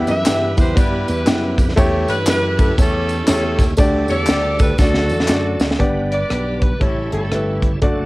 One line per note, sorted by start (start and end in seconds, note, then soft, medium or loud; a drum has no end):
0.00 0.54 E3 medium
0.00 1.73 G3 medium
0.00 0.11 B3 loud
0.00 1.73 B3 medium
0.00 0.11 E4 loud
0.00 1.74 E4 medium
0.00 0.12 G4 loud
0.00 1.73 B4 medium
0.00 0.12 E5 loud
0.07 0.25 F#2 medium
0.07 0.77 G4 medium
0.07 0.76 B4 medium
0.07 0.55 E5 loud
0.07 ride medium
0.07 tambourine medium
0.25 0.54 G2 medium
0.25 0.45 B3 medium
0.25 0.46 E4 medium
0.25 0.45 G4 medium
0.25 0.46 G5 medium
0.25 snare loud
0.25 clap medium
0.25 ride medium
0.25 tambourine loud
0.57 0.74 E2 medium
0.57 0.69 B3 medium
0.57 0.69 E4 medium
0.57 0.69 G4 medium
0.57 0.77 C5 loud
0.57 0.69 E5 medium
0.57 kick medium
0.57 ride medium
0.57 tambourine medium
0.75 1.03 G2 loud
0.75 1.11 B3 medium
0.75 1.11 E4 medium
0.75 1.09 E4 medium
0.75 1.11 G4 medium
0.75 1.09 G4 medium
0.75 1.08 B4 medium
0.75 1.12 D5 medium
0.75 kick loud
0.75 ride medium
0.75 tambourine medium
1.08 1.25 E2 medium
1.08 1.74 E4 medium
1.08 1.74 G4 medium
1.08 1.55 B4 medium
1.08 ride soft
1.08 tambourine medium
1.26 1.54 F#2 medium
1.26 1.62 B3 medium
1.26 1.62 E4 medium
1.26 1.62 G4 medium
1.26 1.62 G5 medium
1.26 snare loud
1.26 clap medium
1.26 ride medium
1.26 tambourine medium
1.58 1.74 F2 loud
1.58 kick medium
1.58 ride medium
1.58 tambourine medium
1.69 snare soft
1.76 2.04 E2 loud
1.76 2.54 E3 medium
1.76 2.12 A3 loud
1.76 3.74 C#4 medium
1.76 2.12 E4 loud
1.76 3.74 E4 medium
1.76 2.13 G4 loud
1.76 3.74 G4 medium
1.76 3.74 A4 medium
1.76 2.13 C#5 loud
1.76 kick loud
1.76 ride medium
1.76 tambourine medium
2.08 2.25 G2 medium
2.08 2.27 B4 loud
2.08 ride medium
2.08 tambourine medium
2.26 2.70 F#2 medium
2.26 2.46 A3 medium
2.26 2.46 E4 medium
2.26 2.46 G4 medium
2.26 3.25 G4 medium
2.26 2.47 B4 medium
2.26 2.75 B4 loud
2.26 snare loud
2.26 clap loud
2.26 ride medium
2.26 tambourine medium
2.58 2.70 A3 medium
2.58 2.71 E4 medium
2.58 2.71 G4 medium
2.58 2.71 A4 medium
2.58 kick loud
2.58 ride medium
2.58 tambourine medium
2.77 3.21 E2 loud
2.77 3.13 A3 medium
2.77 3.28 C#4 medium
2.77 3.13 E4 medium
2.77 3.13 G4 medium
2.77 3.29 A4 loud
2.77 3.13 C#5 medium
2.77 kick loud
2.77 ride medium
2.77 tambourine medium
3.09 ride medium
3.09 tambourine medium
3.27 3.55 E2 loud
3.27 3.63 A3 medium
3.27 3.75 C#4 medium
3.27 3.63 E4 medium
3.27 3.63 G4 medium
3.27 3.67 A4 medium
3.27 3.63 C#5 medium
3.27 snare loud
3.27 clap medium
3.27 ride medium
3.27 tambourine medium
3.59 3.75 D#2 loud
3.59 kick medium
3.59 snare soft
3.59 ride medium
3.59 tambourine medium
3.77 4.05 D2 loud
3.77 4.56 D3 medium
3.77 4.77 G3 medium
3.77 4.13 A3 loud
3.77 4.77 A3 medium
3.77 4.13 D4 medium
3.77 4.77 D4 medium
3.77 4.13 G4 medium
3.77 4.77 A4 medium
3.77 4.14 D5 loud
3.77 kick loud
3.77 ride medium
3.77 tambourine medium
4.08 4.26 E2 loud
4.08 4.75 G4 medium
4.08 4.75 A4 medium
4.08 4.56 D5 loud
4.08 ride medium
4.08 tambourine soft
4.26 4.72 D2 medium
4.26 4.47 A3 medium
4.26 4.47 D4 medium
4.26 4.47 G4 medium
4.26 4.48 D5 medium
4.26 snare loud
4.26 clap medium
4.26 ride medium
4.26 tambourine loud
4.59 4.72 A3 medium
4.59 4.72 D4 medium
4.59 4.72 G4 medium
4.59 4.77 B4 medium
4.59 4.72 D5 medium
4.59 kick loud
4.59 ride medium
4.59 tambourine medium
4.78 5.11 D2 loud
4.78 5.57 D3 medium
4.78 5.79 F#3 medium
4.78 5.14 A3 medium
4.78 5.79 A3 medium
4.78 5.75 D4 medium
4.78 5.15 D4 medium
4.78 5.79 D4 medium
4.78 5.75 F#4 medium
4.78 5.15 F#4 medium
4.78 4.87 G#4 medium
4.78 5.60 A4 medium
4.78 5.15 D5 medium
4.78 kick loud
4.78 snare medium
4.78 tambourine medium
4.87 5.82 A4 medium
4.94 snare medium
5.09 5.27 E2 medium
5.09 tambourine medium
5.20 snare medium
5.28 5.56 F#2 medium
5.28 5.64 A3 medium
5.28 5.64 D4 medium
5.28 5.64 F#4 medium
5.28 5.64 D5 medium
5.28 snare medium
5.28 clap medium
5.28 tambourine medium
5.60 5.76 D2 medium
5.60 snare loud
5.60 tambourine medium
5.71 snare medium
5.79 6.23 G1 medium
5.79 6.57 G2 medium
5.79 6.80 G3 medium
5.79 6.15 B3 loud
5.79 6.80 B3 medium
5.79 6.15 D4 medium
5.79 6.79 D4 medium
5.79 6.15 G4 medium
5.79 6.80 B4 medium
5.79 6.15 D5 loud
5.79 kick medium
5.79 closed hi-hat medium
6.11 6.77 G4 medium
6.11 6.59 B4 medium
6.11 6.58 D5 loud
6.11 closed hi-hat medium
6.30 6.73 B1 medium
6.30 6.65 B3 medium
6.30 6.65 D4 medium
6.30 6.66 G4 medium
6.30 6.66 B4 medium
6.30 cross-stick loud
6.30 closed hi-hat medium
6.60 6.80 B4 medium
6.60 kick medium
6.60 closed hi-hat medium
6.80 7.08 A1 medium
6.80 7.58 A2 medium
6.80 7.80 G3 medium
6.80 6.99 A3 medium
6.80 7.80 C#4 medium
6.80 7.14 C#4 medium
6.80 7.00 E4 medium
6.80 7.80 E4 medium
6.80 7.14 E4 medium
6.80 7.00 G4 medium
6.80 7.11 A4 medium
6.80 7.80 A4 medium
6.80 7.00 C#5 medium
6.80 kick medium
6.80 closed hi-hat medium
7.12 7.29 G1 medium
7.12 7.24 A3 medium
7.12 7.79 C#4 medium
7.12 7.24 E4 medium
7.12 7.79 E4 medium
7.12 7.24 G4 medium
7.12 7.59 A4 medium
7.12 7.24 A4 medium
7.12 closed hi-hat medium
7.32 7.75 G1 medium
7.32 7.67 A3 medium
7.32 7.67 E4 medium
7.32 7.68 G4 medium
7.32 7.68 B4 medium
7.32 cross-stick medium
7.32 closed hi-hat medium
7.62 kick medium
7.62 closed hi-hat medium
7.82 8.06 F#1 medium
7.82 8.06 F#3 medium
7.82 8.06 A3 loud
7.82 8.06 A3 medium
7.82 8.06 D4 medium
7.82 8.06 F#4 medium
7.82 8.06 A4 medium
7.82 8.06 D5 loud
7.82 kick medium
7.82 closed hi-hat medium